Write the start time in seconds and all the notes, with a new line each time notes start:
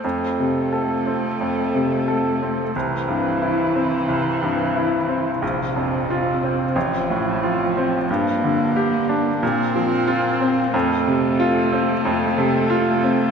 0.03 F2 A3 C4 F4 A4
0.39 C3
0.73 A4
1.06 C4
1.41 F2
1.75 C3
2.08 A4
2.42 C4
2.74 C2 E3 E4 C5
3.08 G2
3.42 E4
3.75 C4
4.08 C2
4.42 G2
4.76 E4
5.08 C4
5.42 A#1 C3 C4 F4
5.76 F2
6.10 F4
6.43 C4
6.75 A1 F3
7.10 A2
7.44 F4
7.77 C4
8.09 G2 A#3 D4 G4 A#4
8.44 D3
8.76 G4
9.09 D4
9.42 A#2 C4 F4
9.76 F3
10.07 F4
10.41 C4
10.74 F2 A3 A4
11.07 C3
11.40 F4
11.73 C4
12.05 F2
12.38 C3
12.70 F4
13.04 C4